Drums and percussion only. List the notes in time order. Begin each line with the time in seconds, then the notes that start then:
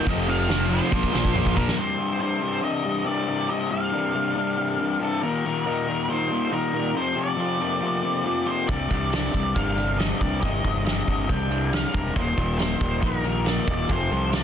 0.07 kick
0.28 open hi-hat
0.49 snare, open hi-hat
0.71 open hi-hat
0.92 kick, high tom
1.03 kick
1.15 snare
1.25 kick
1.36 mid tom
1.46 kick
1.57 kick
1.68 snare
8.69 kick, closed hi-hat
8.91 kick, closed hi-hat
9.13 snare, closed hi-hat
9.34 kick, closed hi-hat
9.56 kick, closed hi-hat
9.78 closed hi-hat
10.00 snare, closed hi-hat
10.21 kick, closed hi-hat
10.43 kick, closed hi-hat
10.64 kick, closed hi-hat
10.86 snare, closed hi-hat
11.08 kick, closed hi-hat
11.29 kick, closed hi-hat
11.51 closed hi-hat
11.73 snare, closed hi-hat
11.94 kick, closed hi-hat
12.16 kick, closed hi-hat
12.38 kick, closed hi-hat
12.59 snare, closed hi-hat
12.81 kick, closed hi-hat
13.03 kick, closed hi-hat
13.24 closed hi-hat
13.46 snare, closed hi-hat
13.68 kick, closed hi-hat
13.89 kick, closed hi-hat
14.11 closed hi-hat
14.33 snare, closed hi-hat